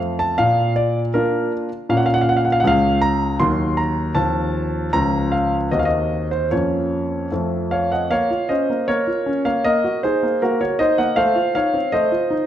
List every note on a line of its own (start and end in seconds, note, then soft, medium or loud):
0.00 0.36 F2 medium
0.00 0.34 A3 soft
0.00 0.34 C4 soft
0.00 0.34 F4 soft
0.19 0.38 A5 medium
0.38 1.12 A#2 medium
0.38 0.72 F5 medium
0.76 0.98 D5 medium
1.14 1.68 A#3 soft
1.14 1.68 D4 soft
1.14 1.69 F4 soft
1.14 1.51 A#4 medium
1.89 2.62 A#2 medium
1.89 2.60 A#3 soft
1.89 2.61 C#4 soft
1.89 2.61 F4 soft
1.89 1.97 F5 medium
1.97 2.04 F#5 medium
2.06 2.13 F5 medium
2.14 2.21 F#5 medium
2.21 2.28 F5 medium
2.29 2.36 F#5 medium
2.37 2.44 F5 medium
2.45 2.52 F#5 medium
2.52 2.60 F5 medium
2.60 3.35 G#3 soft
2.60 2.67 F#5 medium
2.64 3.37 C#2 medium
2.64 3.36 C#4 soft
2.64 3.36 F4 soft
2.64 2.98 F5 medium
3.02 3.36 A#5 medium
3.40 4.13 D#2 medium
3.40 4.12 F#3 soft
3.40 4.12 A#3 soft
3.40 4.13 D#4 soft
3.40 3.77 C6 medium
3.77 4.15 A#5 medium
4.15 4.90 D#2 medium
4.15 4.89 F3 soft
4.15 4.89 C4 soft
4.15 4.89 F4 soft
4.15 4.92 A5 medium
4.93 5.69 C#2 medium
4.93 5.68 F3 soft
4.93 5.68 C#4 soft
4.93 5.68 F4 soft
4.93 5.32 A#5 medium
5.32 5.55 F5 medium
5.71 6.49 D#2 soft
5.71 6.47 A#3 soft
5.71 6.48 C4 soft
5.71 6.48 F#4 soft
5.71 5.78 D#5 medium
5.79 5.86 F5 medium
5.85 6.27 D#5 medium
6.31 6.51 C5 medium
6.51 7.29 F2 soft
6.51 7.27 A#3 soft
6.51 7.28 C#4 soft
6.51 7.28 F4 soft
6.51 7.31 C#5 medium
7.32 8.08 F2 soft
7.32 8.07 A3 soft
7.32 8.07 C4 soft
7.32 8.07 F4 soft
7.71 7.90 C#5 medium
7.71 7.91 F5 medium
7.92 8.10 D#5 soft
7.92 8.10 F#5 medium
8.11 8.29 A#3 medium
8.11 8.47 C#5 medium
8.11 8.49 F5 medium
8.30 8.50 F4 soft
8.49 8.69 C#4 soft
8.49 8.85 C5 medium
8.49 8.87 D#5 medium
8.70 8.87 A#3 soft
8.88 9.06 A#3 medium
8.88 9.41 A#4 medium
8.88 9.45 C#5 medium
9.07 9.27 F4 soft
9.26 9.46 C#4 soft
9.45 9.64 A#3 soft
9.45 9.63 C#5 medium
9.45 9.64 F5 medium
9.64 9.83 A#3 medium
9.64 10.00 A#4 medium
9.64 9.99 D#5 medium
9.84 10.04 F#4 soft
10.03 10.23 D#4 soft
10.03 10.39 G#4 soft
10.03 10.41 C5 medium
10.23 10.41 A#3 soft
10.42 10.60 A#3 medium
10.42 10.59 F#4 medium
10.42 10.60 A#4 medium
10.61 10.80 F#4 soft
10.61 10.78 A#4 soft
10.61 10.79 C#5 medium
10.79 10.99 D#4 soft
10.79 10.97 C5 medium
10.79 10.98 D#5 medium
10.98 11.17 A#3 soft
10.98 11.16 D#5 medium
10.98 11.17 F#5 medium
11.16 11.35 A3 medium
11.16 11.52 C5 medium
11.16 11.53 F5 medium
11.35 11.55 F4 soft
11.55 11.75 D#4 soft
11.55 11.90 C#5 medium
11.55 11.92 F5 medium
11.74 11.93 C4 soft
11.92 12.11 A3 medium
11.92 12.45 C5 medium
11.92 12.46 D#5 medium
12.12 12.31 F4 soft
12.30 12.46 D#4 medium